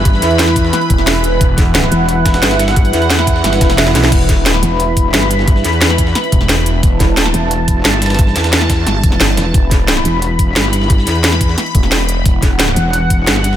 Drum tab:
CC |--------------------------------|--------------------------------|--------------------------------|x-------------------------------|
HH |x---x-x-x-x-x---x-x-x---x---x---|x---x---x---x---x---x-x-x-x-x-x-|x-x-x-x-x-x-x---x-x-x-x-x-x-x---|x---x---x---x---x---x---x---x---|
SD |--o-o---o-o---o-o-----o-o-------|----o---o-o---------o-o-o-o-o-o-|----o---o-o---o-o-o-o-o-o-o-o-o-|----o---o-o-------------o-o---o-|
BD |o-----------o-------o-----------|o---o---------------o-----------|o-----------o-------o-----------|o---o---------------o-----------|

CC |--------------------------------|--------------------------------|--------------------------------|--------------------------------|
HH |x---x-x-x-x-x---x-x-x---x---x---|x---x---x---x---x---x---x---xxxx|x---x-x-x-x-x---x---x---x---x---|x---x---x---x---x---x---x---x---|
SD |--o-o---o-o---o-o-----o-o-------|----o---o-o-------------o-o-oooo|--o-o-o-o-o-o---o-----o-o---o---|----o---o-o-------------o-o---o-|
BD |o-----------o-------o-----------|o---o---------------o-----------|o-----------o-------o-----------|o---o---------------o-----------|

CC |--------------------------------|--------------------------------|
HH |x---x-x-x-x-x---x-x-x---x---x---|x---x---x---x---x---x---x---x---|
SD |--o-o---o-o---o-o-----o-o-------|----o---o-o-------------o-o---o-|
BD |o-----------o-------o-----------|o---o---------------o-----------|